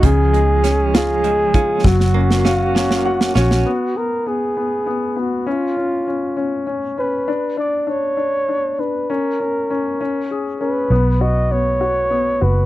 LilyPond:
<<
  \new Staff \with { instrumentName = "Flugelhorn" } { \time 6/8 \key fis \major \tempo 4. = 66 gis'4. gis'4. | fis'2~ fis'8 fis'8~ | fis'8 ais'8 gis'4. fis'8 | eis'2 r8 b'8~ |
b'8 d''8 cis''4. b'8 | ais'2 r8 b'8~ | b'8 dis''8 cis''4. b'8 | }
  \new Staff \with { instrumentName = "Grand piano" } { \time 6/8 \key fis \major cis8 gis8 cis'8 eis'8 gis8 eis'8 | fis8 cis'8 eis''8 cis'8 <fis' fis''>8 <cis' cis''>8 | b8 b8 b8 b8 b8 b8 | cis'8 cis'8 cis'8 cis'8 cis'8 cis'8 |
d'8 d'8 d'8 d'8 d'8 d'8 | cis'8 cis'8 cis'8 cis'8 gis'8 cis'8 | b8 fis'8 b8 fis'8 b8 fis'8 | }
  \new Staff \with { instrumentName = "Clean electric guitar" } { \time 6/8 \key fis \major eis8 gis8 cis'8 gis8 eis8 cis'8 | r8 ais8 cis'8 ais4 cis'8 | r2. | r2. |
r2. | r2. | r2. | }
  \new Staff \with { instrumentName = "Fingered electric bass" } { \clef bass \time 6/8 \key fis \major cis,2~ cis,8 eis,,8 | fis,,2~ fis,,8 ais,,8 | r2. | r2. |
r2. | r2. | b,,2~ b,,8 fis,,8 | }
  \new DrumStaff \with { instrumentName = "Drums" } \drummode { \time 6/8 <hh bd>8 hh8 <hh sn>8 <hh sn>8 hh8 <hh bd>8 | <bd sn>16 sn8 sn16 sn8 sn16 sn8 sn16 sn16 sn16 | r4. r4. | r4. r4. |
r4. r4. | r4. r4. | r4. r4. | }
>>